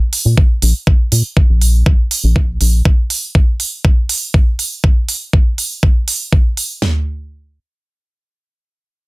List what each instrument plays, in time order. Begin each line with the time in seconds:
0.13 open hi-hat
0.25 analog synth bass A#2
0.38 kick
0.62 analog synth bass A#1, open hi-hat
0.87 kick
1.12 analog synth bass A#2, open hi-hat
1.37 kick
1.49 analog synth bass A#1
1.61 open hi-hat
1.86 analog synth bass A#1, kick
2.11 open hi-hat
2.24 analog synth bass A#1
2.36 kick
2.61 analog synth bass A#1, open hi-hat
2.85 kick
3.10 open hi-hat
3.35 kick
3.60 open hi-hat
3.85 kick
4.09 open hi-hat
4.34 kick
4.59 open hi-hat
4.84 kick
5.09 open hi-hat
5.33 kick
5.58 open hi-hat
5.83 kick
6.08 open hi-hat
6.33 kick
6.57 open hi-hat
6.82 snare, floor tom